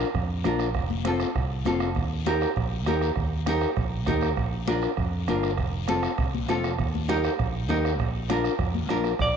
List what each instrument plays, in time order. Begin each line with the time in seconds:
0.00 bombo rim, short guiro
0.14 fingered electric bass F2, bombo low, bombo rim, high conga, long guiro
0.44 fingered electric bass A#1, nylon-string guitar D4 F4 A#4, bombo rim, high conga, short guiro
0.59 bombo rim, short guiro
0.74 fingered electric bass F1, bombo low, bombo rim, high conga, long guiro
0.90 high conga
1.05 nylon-string guitar C4 F4 A4, bombo rim, high conga, short guiro
1.20 bombo rim, short guiro
1.35 fingered electric bass C2, bombo low, bombo rim, high conga, long guiro
1.65 fingered electric bass F1, nylon-string guitar C4 F4 A4, bombo rim, high conga, short guiro
1.80 bombo rim, short guiro
1.95 fingered electric bass D#2, bombo low, bombo rim, high conga, long guiro
2.26 nylon-string guitar D#4 G4 A#4, bombo rim, high conga, short guiro
2.41 bombo rim, short guiro
2.56 fingered electric bass A#1, bombo low, bombo rim, high conga, long guiro
2.86 fingered electric bass D#2, nylon-string guitar D#4 G4 A#4, bombo rim, high conga, short guiro
3.01 bombo rim, short guiro
3.16 fingered electric bass D#2, bombo low, bombo rim, high conga, long guiro
3.46 nylon-string guitar D#4 G4 A#4, bombo rim, high conga, short guiro
3.61 bombo rim, short guiro
3.77 fingered electric bass A#1, bombo low, bombo rim, high conga, long guiro
4.06 fingered electric bass D#2, nylon-string guitar D#4 G4 A#4, bombo low, bombo rim, high conga, short guiro
4.21 bombo rim, short guiro
4.37 fingered electric bass A#1, bombo low, bombo rim, high conga, long guiro
4.67 nylon-string guitar D4 F4 A#4, bombo rim, high conga, short guiro
4.82 bombo rim, short guiro
4.97 fingered electric bass F2, bombo low, bombo rim, high conga, long guiro
5.27 fingered electric bass G1, nylon-string guitar D4 F4 A#4, bombo rim, high conga, short guiro
5.43 bombo rim, short guiro
5.57 fingered electric bass F1, bombo low, bombo rim, high conga, long guiro
5.87 nylon-string guitar C4 F4 A4, bombo rim, high conga, short guiro
6.03 bombo rim, short guiro
6.18 fingered electric bass C2, bombo low, bombo rim, high conga, long guiro
6.35 high conga
6.48 fingered electric bass F1, nylon-string guitar C4 F4 A4, bombo rim, high conga, short guiro
6.63 bombo rim, short guiro
6.79 fingered electric bass D#2, bombo low, bombo rim, high conga, long guiro
6.95 high conga
7.08 nylon-string guitar D#4 G4 A#4, bombo rim, high conga, short guiro
7.24 bombo rim, short guiro
7.39 fingered electric bass A#1, bombo low, bombo rim, high conga, long guiro
7.69 fingered electric bass D#2, nylon-string guitar D#4 G4 A#4, bombo rim, high conga, short guiro
7.85 bombo rim, short guiro
7.99 fingered electric bass A#1, bombo low, bombo rim, high conga, long guiro
8.29 nylon-string guitar D4 F4 A#4, bombo rim, high conga, short guiro
8.44 bombo rim, short guiro
8.59 fingered electric bass F2, bombo low, bombo rim, high conga, long guiro
8.75 high conga
8.88 fingered electric bass A#1, nylon-string guitar D4 F4 A#4, bombo rim, high conga, short guiro
9.04 bombo rim, short guiro
9.19 fingered electric bass A#1, clean electric guitar D5, bombo low, bombo rim, high conga, long guiro